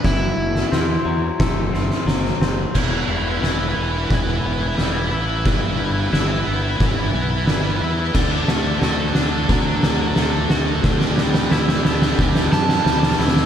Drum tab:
CC |--------------------------------|x-------------------------------|--------------------------------|x-------------------------------|
SD |o-----o-o-------o---o-o-o-o-o---|o-------o-------o-------o-------|o-------o-------o-------o-------|o---o---o---o---o---o---o---o---|
BD |o---------------o---------------|o---------------o---------------|o---------------o---------------|o---------------o---------------|

CC |--------------------------------|
SD |o-o-o-o-o-o-o-o-o-o-o-o-o-ooooo-|
BD |o---------------o---------------|